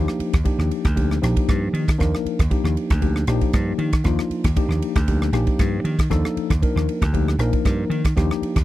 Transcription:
Already playing: tine electric piano F3 A#3 D4 D#4 G4
0.08 cross-stick
0.19 muted slap bass stroke, ride
0.33 slap bass D#2, kick, cross-stick, ride
0.44 tine electric piano F3 A#3 D4 D#4 G4, kick, ride
0.58 slap bass D#2, cross-stick
0.71 ride
0.85 slap bass D2, kick, cross-stick, ride
0.96 tine electric piano F3 A#3 D4 D#4 G4, kick, ride
1.11 cross-stick
1.22 slap bass A#1, tine electric piano F3 A#3 D4 D#4 G4, cross-stick, ride
1.37 kick, ride
1.49 slap bass G2, kick, cross-stick, ride
1.73 slap bass D#3, ride
1.88 kick, cross-stick, ride
1.98 slap bass D#2, tine electric piano F3 A#3 D4 D#4 A#4, kick, cross-stick, ride
2.15 cross-stick
2.25 muted slap bass stroke, ride
2.39 slap bass D#2, kick, cross-stick, ride
2.50 tine electric piano F3 A#3 D4 D#4 G4, kick, ride
2.64 slap bass D#2, cross-stick
2.77 ride
2.90 slap bass D2, kick, cross-stick, ride
3.01 tine electric piano F3 A#3 D4 D#4 G4, kick, ride
3.16 cross-stick
3.27 slap bass A#1, tine electric piano F3 A#3 D4 D#4 G4, cross-stick, ride
3.41 kick, ride
3.53 slap bass G2, kick, cross-stick, ride
3.78 slap bass D#3, ride
3.93 kick, cross-stick, ride
4.04 slap bass D#2, tine electric piano F3 A#3 D4 D#4 F4, kick, cross-stick, ride
4.19 cross-stick
4.30 muted slap bass stroke, ride
4.44 slap bass D#2, kick, cross-stick, ride
4.56 tine electric piano F3 A#3 D4 D#4 G4, kick, ride
4.68 slap bass D#2, cross-stick
4.82 ride
4.96 slap bass D2, kick, cross-stick, ride
5.08 tine electric piano F3 A#3 D4 D#4 G4, kick, ride
5.22 cross-stick
5.32 slap bass A#1, tine electric piano F3 A#3 D4 D#4 G4, cross-stick, ride
5.47 kick, ride
5.59 slap bass G2, kick, cross-stick, ride
5.84 slap bass D#3, ride
5.99 kick, cross-stick, ride
6.10 slap bass D#2, tine electric piano F3 A#3 D4 D#4 A4, kick, cross-stick, ride
6.25 cross-stick
6.37 muted slap bass stroke, ride
6.50 slap bass D#2, kick, cross-stick, ride
6.62 tine electric piano F3 A#3 D4 D#4 A#4, kick, ride
6.76 slap bass D#2, cross-stick
6.89 ride
7.01 slap bass D2, kick, cross-stick, ride
7.13 tine electric piano F3 A#3 D4 D#4 G4, kick, ride
7.28 cross-stick
7.38 slap bass A#1, tine electric piano F3 A#3 D4 D#4 A#4, cross-stick, ride
7.53 kick, ride
7.65 slap bass G2, kick, cross-stick, ride
7.90 slap bass D#3, ride
8.05 kick, cross-stick, ride
8.16 slap bass D#2, tine electric piano F3 A#3 D4 D#4 G4, kick, cross-stick, ride
8.31 cross-stick
8.42 muted slap bass stroke, ride
8.56 slap bass D#2, kick, cross-stick, ride

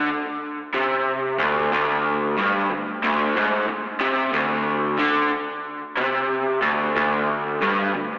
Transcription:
0.74 overdriven electric guitar C3
1.39 overdriven electric guitar D2
1.72 overdriven electric guitar D2
2.38 overdriven electric guitar G2
2.71 overdriven electric guitar D2
3.04 overdriven electric guitar D2
3.37 overdriven electric guitar G#2
3.69 muted overdriven electric guitar stroke
4.01 overdriven electric guitar C3
4.33 overdriven electric guitar D2
4.99 overdriven electric guitar D3
5.97 overdriven electric guitar C3
6.62 overdriven electric guitar D2
6.96 overdriven electric guitar D2
7.62 overdriven electric guitar G2
7.95 overdriven electric guitar D2

